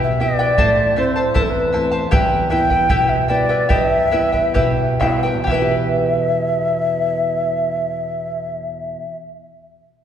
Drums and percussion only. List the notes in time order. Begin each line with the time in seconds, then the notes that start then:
0.58 bombo low
1.36 bombo low
2.13 bombo low
2.71 bombo low
2.90 bombo low
3.70 bombo low
4.34 bombo low
4.56 bombo low
5.01 bombo rim, bombo low
5.47 bombo low